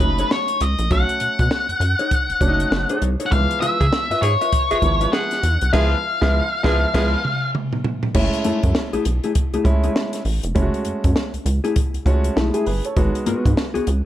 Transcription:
Already playing: lead electric guitar B4
0.00 analog synth bass F#1, upright piano F#3 A3 C#4 D#4, kick, closed hi-hat
0.18 clean electric guitar D#4 A4 C#5, closed hi-hat
0.31 lead electric guitar C#5, snare
0.48 closed hi-hat
0.60 analog synth bass C#2, lead electric guitar D#5, closed hi-hat
0.79 analog synth bass A#1, closed hi-hat
0.90 analog synth bass B1, upright piano F#3 A3 C#4 F#4, lead electric guitar F#5, kick, closed hi-hat
1.09 closed hi-hat
1.20 analog synth bass B2, closed hi-hat
1.39 analog synth bass B2, kick, closed hi-hat
1.51 snare
1.69 analog synth bass F#2, closed hi-hat
1.80 analog synth bass F#2, closed hi-hat
1.99 clean electric guitar D#4 A4 C#5, closed hi-hat
2.11 kick, closed hi-hat
2.29 analog synth bass F#1, closed hi-hat
2.40 analog synth bass F#1, upright piano F#3 A3 C#4 D4, kick, closed hi-hat
2.48 upright piano D#4
2.60 closed hi-hat
2.71 analog synth bass F#1, snare
2.89 clean electric guitar D#4 A4 C#5, closed hi-hat
3.02 analog synth bass C2, closed hi-hat
3.20 clean electric guitar D#4 A4 C#5, closed hi-hat
3.26 lead electric guitar F#5
3.31 analog synth bass C#2, upright piano E3 F3 G#3 B3, lead electric guitar F5, kick, closed hi-hat
3.51 closed hi-hat
3.61 analog synth bass C#3, clean electric guitar F4 B4 F5, lead electric guitar E5, closed hi-hat
3.80 analog synth bass C#3, tenor saxophone G#4, kick, closed hi-hat
3.93 snare
4.10 analog synth bass G#2, clean electric guitar F4 B4 E5, closed hi-hat
4.22 analog synth bass G#2, tenor saxophone G#4, lead electric guitar C#5, closed hi-hat
4.41 clean electric guitar F4 B4 E5, closed hi-hat
4.53 kick, closed hi-hat
4.71 analog synth bass G#1, clean electric guitar F4 B4 E5, tenor saxophone G#4, closed hi-hat
4.82 analog synth bass G#1, upright piano F3 G#3 B3 E4, kick, closed hi-hat
5.01 clean electric guitar F4 B4 E5, closed hi-hat
5.13 tenor saxophone G#4, lead electric guitar F#5, snare
5.31 snare, closed hi-hat
5.43 analog synth bass E2, closed hi-hat
5.61 analog synth bass C2, closed hi-hat
5.73 analog synth bass C#2, upright piano F3 G#3 B3 E4, clean electric guitar F4 B4 E5, tenor saxophone G#4, lead electric guitar F5, kick, snare, crash
6.21 analog synth bass C#2, upright piano F3 G#3 B3 E4, clean electric guitar F4 B4 E5, tenor saxophone G#4, kick, snare
6.63 analog synth bass C#2, upright piano F3 G#3 B3 E4, clean electric guitar F4 B4 E5, tenor saxophone G#4, kick, snare
6.94 analog synth bass C#2, upright piano F3 G#3 B3 E4, clean electric guitar F4 B4 E5, tenor saxophone G#4, kick, snare, crash
7.25 mid tom
7.55 mid tom
7.73 floor tom
7.84 floor tom
8.03 floor tom
8.14 analog synth bass F#1, upright piano G#3 A3 C#4 E4, kick, crash
8.33 closed hi-hat
8.44 analog synth bass F#2, clean electric guitar A3 E4 A4, closed hi-hat
8.63 analog synth bass F#2, kick, closed hi-hat
8.75 snare
8.93 analog synth bass B1, clean electric guitar A3 E4 G#4, closed hi-hat
9.05 analog synth bass B1, closed hi-hat
9.24 clean electric guitar A3 E4 G#4, closed hi-hat
9.35 kick, closed hi-hat
9.53 analog synth bass C#2, clean electric guitar A3 E4 G#4, closed hi-hat
9.64 analog synth bass C#2, upright piano G#3 A3 C#4 E4, kick, closed hi-hat
9.84 clean electric guitar A3 E4 G#4, closed hi-hat
9.96 snare
10.13 snare, closed hi-hat
10.25 analog synth bass A1, open hi-hat
10.43 analog synth bass F1, closed hi-hat
10.55 analog synth bass F#1, upright piano G#3 A3 C#4 E4, kick, closed hi-hat
10.62 upright piano F#4
10.74 closed hi-hat
10.85 analog synth bass F#2, closed hi-hat
11.04 analog synth bass F#2, kick, closed hi-hat
11.16 snare
11.34 analog synth bass C#2, closed hi-hat
11.45 analog synth bass C#2, closed hi-hat
11.64 clean electric guitar A3 E4 G#4, closed hi-hat
11.76 kick, closed hi-hat
11.94 analog synth bass C#2, closed hi-hat
12.06 analog synth bass C#2, upright piano G#3 A3 C#4 F#4, kick, closed hi-hat
12.24 closed hi-hat
12.36 analog synth bass B1, clean electric guitar A3 E4 G#4, upright piano C#4 E4, snare
12.54 clean electric guitar A3 E4 G#4, upright piano E4 G#4, closed hi-hat
12.66 analog synth bass G1, upright piano G#4 B4, open hi-hat
12.85 upright piano A4 C#5, closed hi-hat
12.96 analog synth bass G#1, upright piano G#3 B3 D#4 F#4, kick, closed hi-hat
13.15 closed hi-hat
13.26 analog synth bass G#2, clean electric guitar B3 F#4 B4, closed hi-hat
13.45 analog synth bass G#2, kick, closed hi-hat
13.57 snare
13.74 analog synth bass C#2, clean electric guitar B3 F#4 G#4, closed hi-hat
13.87 analog synth bass C#2, closed hi-hat

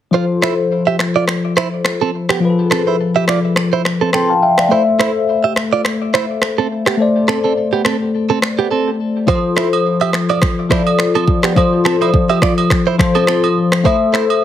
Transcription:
0.11 tine electric piano F3 F4 A4, clean electric guitar F4 C5
0.16 tine electric piano C5
0.42 clean electric guitar E4 C5, finger snap, cross-stick
0.87 clean electric guitar G4 E5
0.99 finger snap, cross-stick
1.16 clean electric guitar F4 D5
1.28 finger snap, cross-stick
1.57 clean electric guitar E4 C5, finger snap, cross-stick
1.85 finger snap, cross-stick
2.01 clean electric guitar C4 A4
2.29 clean electric guitar B3 G4, finger snap, cross-stick
2.40 tine electric piano F3 F4 G#4
2.45 tine electric piano B4
2.50 tine electric piano A4
2.71 clean electric guitar C4 A4, finger snap, cross-stick
2.87 clean electric guitar E4 C5
3.16 clean electric guitar G4 E5
3.28 clean electric guitar F4 D5, finger snap, cross-stick
3.56 finger snap, cross-stick
3.73 clean electric guitar E4 C5
3.85 finger snap, cross-stick
4.01 clean electric guitar C4 A4
4.13 clean electric guitar C4 A4, tine electric piano G5 A5 C6, finger snap, cross-stick
4.30 tine electric piano F5 A5
4.42 tine electric piano E5 F5 G5
4.58 tine electric piano D5 F5, finger snap, cross-stick
4.68 tine electric piano A3 A4 C5, clean electric guitar E4 C5
4.74 tine electric piano E5
4.99 clean electric guitar E4 C5, finger snap, cross-stick
5.44 clean electric guitar G4 E5
5.56 finger snap, cross-stick
5.73 clean electric guitar F4 D5
5.85 finger snap, cross-stick
6.14 clean electric guitar E4 C5, finger snap, cross-stick
6.42 finger snap, cross-stick
6.58 clean electric guitar C4 A4
6.86 clean electric guitar B3 G4, finger snap, cross-stick
6.97 tine electric piano A3 A4 C5
7.02 tine electric piano D5
7.28 clean electric guitar C4 A4, finger snap, cross-stick
7.44 clean electric guitar C4 A4
7.73 clean electric guitar B3 G4
7.85 clean electric guitar C4 A4, finger snap, cross-stick
8.30 clean electric guitar C4 A4
8.42 finger snap, cross-stick
8.59 clean electric guitar B3 G4
8.71 clean electric guitar C4 A4
9.27 tine electric piano F3 F4 G4 C5, clean electric guitar F4 C5, kick, high agogo
9.35 tine electric piano A4
9.57 clean electric guitar E4 C5, finger snap, cross-stick
9.73 high agogo
10.01 clean electric guitar G4 E5, high agogo
10.13 finger snap, cross-stick
10.29 clean electric guitar F4 D5, high agogo
10.42 finger snap, kick, cross-stick
10.69 tine electric piano F3 F4 A4 D5, clean electric guitar E4 C5, finger snap, kick, cross-stick
10.87 high agogo
10.99 finger snap, cross-stick
11.15 clean electric guitar C4 A4, high agogo
11.28 kick
11.43 clean electric guitar B3 G4, finger snap, cross-stick
11.55 tine electric piano F3 F4 A4 C5, kick, high agogo
11.85 clean electric guitar C4 A4, finger snap, cross-stick
12.01 clean electric guitar E4 C5, high agogo
12.14 kick
12.29 clean electric guitar G4 E5, high agogo
12.42 clean electric guitar F4 D5, finger snap, kick, cross-stick
12.58 high agogo
12.70 finger snap, kick, cross-stick
12.87 clean electric guitar E4 C5
12.98 tine electric piano F3 F4 A4 C5, finger snap, kick, cross-stick
13.15 clean electric guitar C4 A4, high agogo
13.27 clean electric guitar C4 A4, finger snap, cross-stick
13.44 high agogo
13.72 finger snap, cross-stick
13.84 tine electric piano A3 A4 C5 E5, clean electric guitar E4 C5, kick, high agogo
14.14 clean electric guitar E4 C5, finger snap, cross-stick
14.30 high agogo

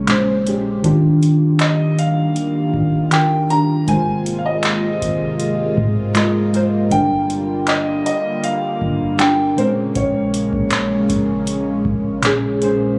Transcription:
Already playing: 808-style bass A#1, analog synth pad C#3 G#3 A#3 C#4
0.07 synth keys A#2 G#3 C#4 C5, clap, closed hi-hat
0.45 synth keys A#2 G#3 C#4 G4, closed hi-hat
0.83 808-style bass D#1, synth keys D#3 D4 F4 G4, analog synth pad D#3 G3 A#3 F4, kick, closed hi-hat
1.23 closed hi-hat
1.59 grand piano D#5, clap, closed hi-hat
1.99 grand piano F5, closed hi-hat
2.36 closed hi-hat
2.74 808-style bass D#1, kick
3.11 synth keys D#3 D4 F4 A#4, grand piano G5, clap, closed hi-hat
3.49 synth keys D#3 D4 F4, grand piano A#5, closed hi-hat
3.53 synth keys G4
3.87 808-style bass G#1, analog synth pad C3 G#3 A#3, synth keys G#3 F4 A#4 C5, grand piano G#5, kick, closed hi-hat
4.26 closed hi-hat
4.38 grand piano F5
4.46 grand piano D#5
4.63 clap, closed hi-hat
5.02 808-style bass G#1, kick, closed hi-hat
5.40 closed hi-hat
5.77 808-style bass G#2, kick
6.15 synth keys G#3 F4 A#4 D#5, clap, closed hi-hat
6.53 synth keys G#3 F4 A#4 C5, closed hi-hat
6.91 808-style bass G1, analog synth pad D3 G3, synth keys G3 D4 F4 A#4, grand piano G5, kick, closed hi-hat
7.30 closed hi-hat
7.67 grand piano D#5, clap, closed hi-hat
8.06 grand piano D#5, closed hi-hat
8.44 grand piano F5, closed hi-hat
8.81 808-style bass G1, kick
9.18 synth keys G3 D4 F4, grand piano G5, clap, closed hi-hat
9.22 synth keys A#4
9.56 synth keys A#2 G#3 C4 A#4, analog synth pad C#3 G#3 C#4, grand piano C5, closed hi-hat
9.65 synth keys C#4
9.95 808-style bass A#1, grand piano C#5, kick, closed hi-hat
10.34 closed hi-hat
10.53 808-style bass A#1, kick
10.71 clap, closed hi-hat
11.09 808-style bass A#1, kick, closed hi-hat
11.47 closed hi-hat
11.85 808-style bass A#1, kick
12.22 synth keys A#2 G#3 C#4 G#4, clap, closed hi-hat
12.60 synth keys A#2 G#3 C#4 C5, closed hi-hat

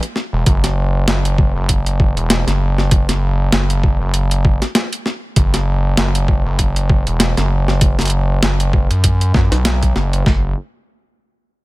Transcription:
0.03 closed hi-hat
0.16 snare
0.33 analog synth bass E1
0.46 analog synth bass F#1, kick, closed hi-hat
0.64 snare, closed hi-hat
1.07 analog synth bass F#1, snare, closed hi-hat
1.25 closed hi-hat
1.38 kick
1.56 analog synth bass F#1
1.69 kick, closed hi-hat
1.86 closed hi-hat
2.00 kick
2.17 analog synth bass E1, closed hi-hat
2.30 snare, closed hi-hat
2.47 analog synth bass F#1, snare, closed hi-hat
2.78 snare
2.91 kick, closed hi-hat
3.09 analog synth bass F#1, snare, closed hi-hat
3.52 analog synth bass F#1, snare, closed hi-hat
3.70 closed hi-hat
3.83 kick
4.01 analog synth bass F#1
4.14 closed hi-hat
4.31 closed hi-hat
4.45 kick
4.62 snare, closed hi-hat
4.75 snare, closed hi-hat
4.93 closed hi-hat
5.06 snare
5.36 analog synth bass F#1, kick, closed hi-hat
5.54 snare, closed hi-hat
5.97 analog synth bass F#1, snare, closed hi-hat
6.15 closed hi-hat
6.28 kick
6.46 analog synth bass F#1
6.59 kick, closed hi-hat
6.76 closed hi-hat
6.90 kick
7.07 analog synth bass E1, closed hi-hat
7.20 snare, closed hi-hat
7.37 analog synth bass F#1, snare, closed hi-hat
7.68 snare
7.81 kick, closed hi-hat
7.99 analog synth bass F#1, snare, closed hi-hat
8.01 closed hi-hat
8.05 closed hi-hat
8.08 closed hi-hat
8.10 closed hi-hat
8.43 analog synth bass F#1, snare, closed hi-hat
8.60 closed hi-hat
8.73 kick
8.91 analog synth bass F#2, closed hi-hat
9.04 kick, closed hi-hat
9.21 closed hi-hat
9.34 analog synth bass F#2, kick, snare
9.52 analog synth bass B1, snare, closed hi-hat
9.65 snare, closed hi-hat
9.83 kick, closed hi-hat
9.95 analog synth bass F#1, snare
10.13 closed hi-hat
10.26 analog synth bass F#1, kick, snare

